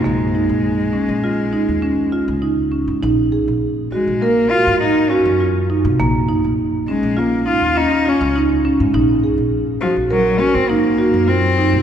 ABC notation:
X:1
M:5/4
L:1/16
Q:1/4=102
K:Bbm
V:1 name="Marimba"
B,2 E4 D2 F2 E2 D2 F2 E2 D2 | E2 A4 G2 B2 G2 E2 G2 F2 E2 | B,2 E4 D2 F2 E2 D2 F2 E2 D2 | E2 A4 G2 B2 G2 E2 G2 F2 E2 |]
V:2 name="Cello"
A,16 z4 | z6 A,2 B,2 F2 E2 D2 z4 | z6 A,2 B,2 F2 E2 D2 z4 | z6 F,2 G,2 D C B,4 C4 |]
V:3 name="Upright bass" clef=bass
B,,,3 B,,,4 B,,,4 E,,2 z2 D,,4 A,, | B,,,3 B,,,4 B,,,4 A,,2 z2 G,,4 C, | B,,,3 B,,,4 B,,,4 E,,2 z2 D,,4 A,, | B,,,3 B,,,4 B,,,4 A,,2 z2 G,,4 C, |]